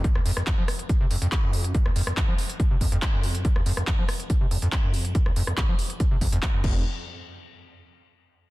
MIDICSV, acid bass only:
0, 0, Header, 1, 2, 480
1, 0, Start_track
1, 0, Tempo, 425532
1, 49, Time_signature, 4, 2, 24, 8
1, 9588, End_track
2, 0, Start_track
2, 0, Title_t, "Acid bass"
2, 0, Program_c, 0, 38
2, 47, Note_on_c, 0, 41, 88
2, 89, Note_off_c, 0, 41, 0
2, 173, Note_on_c, 0, 39, 80
2, 236, Note_off_c, 0, 39, 0
2, 288, Note_on_c, 0, 41, 104
2, 357, Note_off_c, 0, 41, 0
2, 414, Note_on_c, 0, 41, 80
2, 477, Note_off_c, 0, 41, 0
2, 529, Note_on_c, 0, 41, 86
2, 598, Note_off_c, 0, 41, 0
2, 654, Note_on_c, 0, 53, 103
2, 717, Note_off_c, 0, 53, 0
2, 1134, Note_on_c, 0, 48, 83
2, 1197, Note_off_c, 0, 48, 0
2, 1248, Note_on_c, 0, 41, 75
2, 1317, Note_off_c, 0, 41, 0
2, 1373, Note_on_c, 0, 41, 106
2, 1437, Note_off_c, 0, 41, 0
2, 1614, Note_on_c, 0, 42, 78
2, 1728, Note_on_c, 0, 41, 74
2, 1745, Note_off_c, 0, 42, 0
2, 1853, Note_on_c, 0, 42, 73
2, 1870, Note_off_c, 0, 41, 0
2, 1948, Note_off_c, 0, 42, 0
2, 1968, Note_on_c, 0, 41, 85
2, 2010, Note_off_c, 0, 41, 0
2, 2093, Note_on_c, 0, 39, 78
2, 2157, Note_off_c, 0, 39, 0
2, 2209, Note_on_c, 0, 41, 101
2, 2278, Note_off_c, 0, 41, 0
2, 2334, Note_on_c, 0, 41, 80
2, 2397, Note_off_c, 0, 41, 0
2, 2449, Note_on_c, 0, 41, 85
2, 2518, Note_off_c, 0, 41, 0
2, 2574, Note_on_c, 0, 53, 102
2, 2637, Note_off_c, 0, 53, 0
2, 3054, Note_on_c, 0, 48, 81
2, 3117, Note_off_c, 0, 48, 0
2, 3170, Note_on_c, 0, 41, 80
2, 3238, Note_off_c, 0, 41, 0
2, 3295, Note_on_c, 0, 41, 110
2, 3357, Note_off_c, 0, 41, 0
2, 3535, Note_on_c, 0, 42, 81
2, 3649, Note_on_c, 0, 41, 79
2, 3666, Note_off_c, 0, 42, 0
2, 3774, Note_on_c, 0, 42, 75
2, 3791, Note_off_c, 0, 41, 0
2, 3869, Note_off_c, 0, 42, 0
2, 3890, Note_on_c, 0, 41, 83
2, 3930, Note_off_c, 0, 41, 0
2, 4015, Note_on_c, 0, 39, 75
2, 4078, Note_off_c, 0, 39, 0
2, 4129, Note_on_c, 0, 41, 101
2, 4198, Note_off_c, 0, 41, 0
2, 4256, Note_on_c, 0, 41, 77
2, 4318, Note_off_c, 0, 41, 0
2, 4371, Note_on_c, 0, 41, 86
2, 4439, Note_off_c, 0, 41, 0
2, 4496, Note_on_c, 0, 53, 102
2, 4558, Note_off_c, 0, 53, 0
2, 4975, Note_on_c, 0, 48, 82
2, 5037, Note_off_c, 0, 48, 0
2, 5089, Note_on_c, 0, 41, 77
2, 5158, Note_off_c, 0, 41, 0
2, 5215, Note_on_c, 0, 41, 106
2, 5277, Note_off_c, 0, 41, 0
2, 5454, Note_on_c, 0, 42, 81
2, 5569, Note_on_c, 0, 41, 79
2, 5586, Note_off_c, 0, 42, 0
2, 5695, Note_on_c, 0, 42, 72
2, 5712, Note_off_c, 0, 41, 0
2, 5789, Note_off_c, 0, 42, 0
2, 5810, Note_on_c, 0, 41, 84
2, 5850, Note_off_c, 0, 41, 0
2, 5935, Note_on_c, 0, 39, 76
2, 5997, Note_off_c, 0, 39, 0
2, 6049, Note_on_c, 0, 41, 102
2, 6118, Note_off_c, 0, 41, 0
2, 6174, Note_on_c, 0, 41, 76
2, 6237, Note_off_c, 0, 41, 0
2, 6288, Note_on_c, 0, 41, 84
2, 6357, Note_off_c, 0, 41, 0
2, 6414, Note_on_c, 0, 53, 103
2, 6477, Note_off_c, 0, 53, 0
2, 6894, Note_on_c, 0, 48, 76
2, 6957, Note_off_c, 0, 48, 0
2, 7008, Note_on_c, 0, 41, 78
2, 7077, Note_off_c, 0, 41, 0
2, 7134, Note_on_c, 0, 41, 106
2, 7197, Note_off_c, 0, 41, 0
2, 7374, Note_on_c, 0, 42, 81
2, 7482, Note_off_c, 0, 42, 0
2, 7488, Note_on_c, 0, 41, 94
2, 7712, Note_off_c, 0, 41, 0
2, 9588, End_track
0, 0, End_of_file